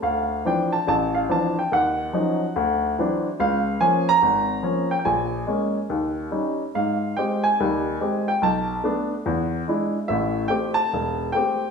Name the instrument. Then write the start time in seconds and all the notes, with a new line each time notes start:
grand piano
0.02 D2 F5
0.45 E3 F3 C4 D4 G5
0.73 A5
0.88 A1 A5
1.15 F5
1.29 E3 F3 C4 D4 A5
1.59 G5
1.72 D#2 F#5
2.13 F3 F#3 C#4 D#4
2.56 D2
2.99 E3 F#3 C4 D4
3.40 C#2 F5
3.81 F3 A#3 C#4 G#5
4.09 A#5
4.22 G#1
4.63 F3 A#3 C#4
4.91 G5
4.99 G5
5.05 A#1 G#5
5.47 G#3 A#3 C#4
5.90 D#2
6.31 G3 C#4 D#4
6.75 G#2 F5
7.17 G#3 C4 G4 G5
7.44 G#5
7.60 D#2 G3
8.01 G#3 C4 G4
8.28 G5
8.42 B1 A5
8.84 A3 B3 D4
9.26 E2
9.68 G#3 D4 E4
10.08 A1 A2 E5
10.48 A3 C4 G4 G5
10.74 A5
10.93 E1
11.32 A3 C4 G4 G5